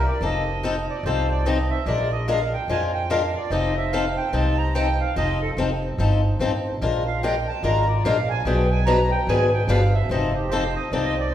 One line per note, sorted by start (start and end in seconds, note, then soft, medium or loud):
0.08 0.22 D5 medium
0.21 0.87 F1 medium
0.21 0.43 F3 medium
0.21 0.43 C4 medium
0.21 0.43 D#4 medium
0.21 0.43 A4 medium
0.25 0.86 D#5 medium
0.63 0.74 F3 medium
0.63 0.74 C4 medium
0.63 0.75 D#4 medium
0.63 0.75 A4 medium
0.90 1.05 D5 medium
1.03 1.70 C2 medium
1.03 1.26 F3 medium
1.03 1.26 C4 medium
1.03 1.26 D#4 medium
1.03 1.26 A4 medium
1.03 1.29 C5 medium
1.31 1.45 D5 medium
1.46 1.57 F3 medium
1.46 1.57 C4 medium
1.46 1.57 D#4 medium
1.46 1.57 A4 medium
1.46 1.70 D#5 medium
1.70 1.86 E5 medium
1.86 2.52 A#1 medium
1.86 2.07 F3 medium
1.86 2.08 G#3 medium
1.86 2.08 D4 medium
1.86 2.08 F4 medium
1.86 2.08 A#4 medium
1.86 2.12 D5 medium
2.11 2.27 D#5 medium
2.28 2.39 F3 medium
2.28 2.39 G#3 medium
2.28 2.39 D4 medium
2.28 2.39 F4 medium
2.28 2.39 A#4 loud
2.28 2.53 F5 medium
2.53 2.69 G5 medium
2.68 3.34 F2 medium
2.68 2.90 F3 medium
2.68 2.90 G#3 medium
2.68 2.91 D4 medium
2.68 2.91 F4 medium
2.68 2.91 A#4 medium
2.68 2.85 G#5 medium
2.94 3.09 G5 medium
3.10 3.21 F3 medium
3.10 3.21 G#3 medium
3.10 3.21 D4 medium
3.10 3.21 F4 medium
3.10 3.22 A#4 loud
3.10 3.35 F5 medium
3.36 3.51 D5 medium
3.50 4.17 F1 medium
3.50 3.72 F3 medium
3.50 3.73 C4 medium
3.50 3.73 D#4 medium
3.50 3.73 A4 medium
3.50 3.76 D#5 medium
3.77 3.92 E5 medium
3.92 4.04 F3 medium
3.92 4.04 C4 medium
3.92 4.04 D#4 medium
3.92 4.04 A4 loud
3.92 4.17 F5 medium
4.17 4.33 G5 medium
4.32 4.99 C2 medium
4.32 4.54 F3 medium
4.32 4.54 C4 medium
4.32 4.55 D#4 medium
4.32 4.55 A4 medium
4.32 4.58 A5 medium
4.58 4.74 A#5 loud
4.75 4.86 F3 medium
4.75 4.86 C4 medium
4.75 4.86 D#4 loud
4.75 4.86 A4 loud
4.75 5.00 G5 loud
5.00 5.16 F5 medium
5.16 5.49 F1 medium
5.16 5.37 F3 medium
5.16 5.37 C4 medium
5.16 5.37 D#4 medium
5.16 5.38 A4 medium
5.16 5.41 D#5 medium
5.42 5.51 A4 medium
5.57 5.92 F1 medium
5.57 5.69 F3 medium
5.57 5.69 C4 medium
5.57 5.69 D#4 medium
5.57 5.69 A4 medium
5.98 6.33 G1 medium
5.98 6.20 F3 medium
5.98 6.20 C4 medium
5.98 6.20 D#4 medium
5.98 6.20 A4 medium
6.39 6.74 A1 medium
6.39 6.51 F3 medium
6.39 6.51 C4 medium
6.39 6.52 D#4 medium
6.39 6.52 A4 loud
6.81 7.47 A#1 medium
6.81 7.02 F3 medium
6.81 7.02 G#3 medium
6.81 7.02 D4 medium
6.81 7.03 F4 medium
6.81 7.03 A#4 medium
7.07 7.22 F5 medium
7.23 7.34 F3 medium
7.23 7.34 G#3 medium
7.23 7.34 D4 medium
7.23 7.34 F4 medium
7.23 7.34 A#4 medium
7.23 7.47 G5 medium
7.48 7.63 A5 medium
7.63 7.98 G#1 medium
7.63 7.84 F3 medium
7.63 7.84 G#3 medium
7.63 7.84 D4 medium
7.63 7.84 F4 medium
7.63 7.85 A#4 medium
7.63 7.88 A#5 medium
7.88 8.03 D5 medium
8.04 8.39 A#1 medium
8.04 8.16 F3 medium
8.04 8.16 G#3 medium
8.04 8.16 D4 medium
8.04 8.16 F4 medium
8.04 8.16 A#4 medium
8.04 8.29 F5 medium
8.30 8.45 G#5 loud
8.45 9.11 B1 medium
8.45 8.66 B2 medium
8.45 8.67 F3 medium
8.45 8.67 B3 medium
8.45 8.67 D4 medium
8.45 8.67 G#4 medium
8.45 8.67 B4 medium
8.45 8.70 G5 medium
8.71 8.86 G#5 medium
8.86 8.98 B2 medium
8.86 8.98 F3 medium
8.86 8.98 B3 medium
8.86 8.98 D4 medium
8.86 8.98 G#4 medium
8.86 8.98 B4 medium
8.86 9.11 A#5 loud
9.11 9.27 G5 medium
9.27 9.62 G#1 medium
9.27 9.49 B2 medium
9.27 9.49 F3 medium
9.27 9.49 B3 medium
9.27 9.49 D4 medium
9.27 9.49 G#4 medium
9.27 9.50 B4 medium
9.27 9.53 G#5 loud
9.53 9.68 G5 medium
9.68 10.03 G1 medium
9.68 9.80 B2 medium
9.68 9.80 F3 medium
9.68 9.80 B3 medium
9.68 9.80 D4 loud
9.68 9.80 G#4 medium
9.68 9.80 B4 medium
9.68 9.94 F5 medium
9.94 10.09 E5 medium
10.09 10.75 F1 medium
10.09 10.31 F3 medium
10.09 10.31 C4 medium
10.09 10.32 D#4 medium
10.09 10.32 A4 medium
10.09 10.35 D#5 medium
10.35 10.50 G4 medium
10.50 10.62 F3 medium
10.50 10.63 C4 medium
10.50 10.63 D#4 loud
10.50 10.63 A4 loud
10.50 10.75 C5 medium
10.76 10.91 D#5 loud
10.92 11.34 C2 medium
10.92 11.13 F3 medium
10.92 11.13 C4 medium
10.92 11.14 D#4 medium
10.92 11.14 A4 medium
10.92 11.05 D5 medium
11.05 11.19 D#5 loud
11.20 11.33 D5 medium